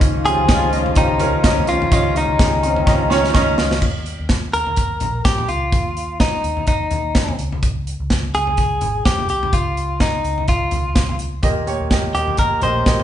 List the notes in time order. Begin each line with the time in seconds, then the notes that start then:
Already playing: C#2 G#2 D#3 F3 C#4 D#4 F4 D#5
0.01 kick, closed hi-hat
0.25 C#4 F4 G4 G#4, closed hi-hat
0.38 C#2
0.48 C#2 C#4 F4 D#5, kick, snare, closed hi-hat
0.72 C#4 F4 D#5, closed hi-hat
0.86 floor tom
0.95 C#2 C#4 D#4 F4 G4, kick, closed hi-hat
1.19 C#4 F4 A#4, closed hi-hat, floor tom
1.43 C#2 C#4 F4 D#5, kick, snare, closed hi-hat
1.57 floor tom
1.67 C2 G#2 C#4 F4 D#5, closed hi-hat
1.82 floor tom
1.91 C#2 C#4 F4 D#5, kick, closed hi-hat
2.15 C#4 D#4 F4 D#5, closed hi-hat
2.29 C#2
2.39 C#2 C#4 F4 G#4, kick, snare, closed hi-hat
2.63 C3 C4 C#4 F4 D#5, closed hi-hat
2.76 floor tom
2.86 C#2 C#4 F4 D#5, kick, snare
3.10 C#4 F4 C#5, snare
3.24 snare
3.34 C#2 C#4 F4 D#5, kick, snare
3.58 C#2 C#4 F4 D#5, snare
3.71 snare
3.82 D#2, kick, crash
4.06 closed hi-hat
4.19 D#2
4.29 kick, snare, closed hi-hat
4.53 D#2 A#4, closed hi-hat
4.67 floor tom
4.76 kick, closed hi-hat
5.00 A#1, closed hi-hat, floor tom
5.25 A#1 G4, kick, snare, closed hi-hat
5.38 floor tom
5.48 C#2 F4, closed hi-hat
5.72 D#2, kick, closed hi-hat
5.97 closed hi-hat
6.20 D#4, kick, snare, closed hi-hat
6.44 D#2, closed hi-hat
6.57 floor tom
6.67 D#4, kick, closed hi-hat
6.91 D#2, closed hi-hat, floor tom
7.15 kick, snare, closed hi-hat
7.28 floor tom
7.39 C#2, closed hi-hat
7.52 floor tom
7.63 kick, closed hi-hat
7.87 closed hi-hat
8.00 C#2
8.10 kick, snare, closed hi-hat
8.34 C#2 G#4, closed hi-hat
8.47 floor tom
8.57 kick, closed hi-hat
8.81 G#1, closed hi-hat, floor tom
9.05 F1 G4, kick, snare, closed hi-hat
9.18 floor tom
9.29 C2 G4, closed hi-hat
9.43 floor tom
9.53 C#2 F4, kick, closed hi-hat
9.77 closed hi-hat
10.00 D#4, kick, snare, closed hi-hat
10.24 C#2, closed hi-hat
10.38 floor tom
10.48 F4, kick, closed hi-hat
10.71 C#2, closed hi-hat, floor tom
10.95 kick, snare, closed hi-hat
11.09 floor tom
11.19 closed hi-hat
11.42 D#2 A#2 A#3 G4 D#5, kick, closed hi-hat
11.66 A#3 G4 C#5, closed hi-hat
11.80 D#2
11.91 A#3 G4 D#5, kick, snare, closed hi-hat
12.15 D#2 A#3 G4 D#5, closed hi-hat
12.28 floor tom
12.37 A#3 G4 A#4 D#5, kick, closed hi-hat
12.61 A#1 A#3 G4 C5 D#5, closed hi-hat, floor tom
12.86 A#1 A#3 G4 D#5, kick, snare, closed hi-hat
13.00 floor tom